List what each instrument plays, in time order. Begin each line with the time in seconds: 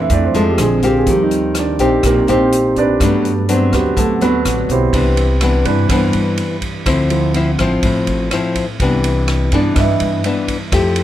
Already playing: grand piano E3 A3 C4 D4 C5 D5 E5 F5, nylon-string guitar E3 A3 D4
0.02 grand piano E5
0.10 upright bass F2, nylon-string guitar F2, grand piano E3 A3 C4 D4 D5, kick, closed hi-hat
0.26 grand piano C5
0.34 upright bass F2, nylon-string guitar F3 G#3 D4, grand piano A4, closed hi-hat
0.50 grand piano G4
0.58 upright bass A#1, grand piano D3 G#3 C4 G#4, cross-stick, closed hi-hat
0.74 grand piano C4
0.82 nylon-string guitar A#3 C4 G4, grand piano F4, kick, closed hi-hat
0.98 grand piano G#4
1.07 nylon-string guitar D#3, grand piano F3 G3 C4 G4, kick, closed hi-hat
1.23 grand piano D#4
1.31 closed hi-hat
1.55 cross-stick, closed hi-hat
1.59 grand piano D4 D5
1.79 upright bass A#1, nylon-string guitar A#3 C4 G4, grand piano C4 D#4 G4 C5, kick, closed hi-hat
2.03 upright bass A#1, nylon-string guitar A#2, grand piano A#3 D#4 G4 A#4, kick, cross-stick, closed hi-hat
2.27 upright bass A#1, nylon-string guitar A#3 C4 G4, grand piano C4 D#4 G4 C5, closed hi-hat
2.52 closed hi-hat
2.76 grand piano D4 G4 B4 D5, kick, closed hi-hat
3.00 upright bass G2, nylon-string guitar G2 F#3 B3 D4, grand piano F#3 A3 B3, kick, cross-stick, closed hi-hat
3.25 closed hi-hat
3.49 nylon-string guitar F#3 B3 D4, grand piano C4 C5, closed hi-hat
3.73 upright bass D2, grand piano B3 F#4 G4 B4, kick, cross-stick, closed hi-hat
3.97 upright bass D2, nylon-string guitar D3, grand piano F#3 A3 B3 A4, kick, closed hi-hat
4.21 upright bass D2, nylon-string guitar F#3 B3 D4, grand piano B3 D4 F#4 B4, closed hi-hat
4.45 upright bass A1, cross-stick, closed hi-hat
4.69 upright bass B1, grand piano C4 E4 G4 C5, kick, closed hi-hat
4.93 upright bass C2, nylon-string guitar C3 E3 B3 D4, kick, ride
5.17 ride
5.41 nylon-string guitar E3 B3 D4, cross-stick, ride
5.65 upright bass G2, grand piano E3 D4 B4, kick, ride
5.89 upright bass G2, nylon-string guitar G2 E3 B3 D4, grand piano C5, kick, cross-stick, ride
6.13 upright bass G2, ride
6.37 ride
6.62 kick, ride
6.86 upright bass D2, nylon-string guitar D3 F3 C4 E4, kick, cross-stick, ride
7.10 grand piano F3 C4 E4, ride
7.34 nylon-string guitar F3 C4 E4, ride
7.59 upright bass A1, nylon-string guitar F3 C4 E4, kick, cross-stick, ride
7.83 upright bass A1, nylon-string guitar A2, kick, ride
8.07 upright bass A1, ride
8.31 nylon-string guitar F3 C4 E4, cross-stick, ride
8.55 kick, ride
8.80 upright bass C2, nylon-string guitar C3 E3 B3 D4, kick, ride
9.04 ride
9.28 cross-stick, ride
9.52 upright bass G2, nylon-string guitar E3 B3 D4, grand piano E3 B3 D4 D5, kick, ride
9.75 upright bass G2, nylon-string guitar G2, grand piano D#5, kick, cross-stick, ride
9.79 grand piano E5
10.00 upright bass G2, ride
10.24 nylon-string guitar E3 B3 D4, ride
10.48 kick, ride
10.72 upright bass F2, nylon-string guitar F3 A3 E4 G4, kick, cross-stick, ride
10.96 ride